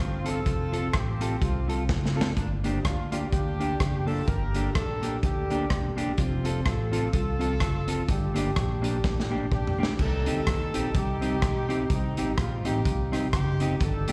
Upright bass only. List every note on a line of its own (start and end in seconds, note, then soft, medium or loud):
0.00 0.39 G1 medium
0.46 0.87 F1 loud
0.94 1.35 A1 medium
1.42 1.91 C2 medium
1.89 2.30 F#1 medium
2.37 2.77 G1 loud
2.85 3.25 D2 medium
3.32 3.73 D2 medium
3.80 4.21 F#1 medium
4.28 4.68 G1 loud
4.75 5.16 A#1 medium
5.23 5.63 D2 medium
5.70 6.11 E1 medium
6.18 6.59 F1 loud
6.66 7.06 A1 medium
7.13 7.54 C2 medium
8.08 8.49 G1 loud
8.57 8.97 A#1 medium
9.04 9.45 A1 medium
9.51 9.92 B1 medium
9.99 10.23 C2 loud
10.27 10.44 D2 medium
10.47 10.70 D#2 loud
10.75 10.92 A#1 medium
10.95 11.35 C2 medium
11.42 11.83 B1 medium
11.90 12.13 C2 loud
12.18 12.35 A1 medium
12.38 12.61 A#1 medium
12.65 12.82 A1 medium
12.85 13.26 C2 medium
13.33 13.74 F#1 loud
13.81 14.04 G1 loud
14.08 14.12 A#1 medium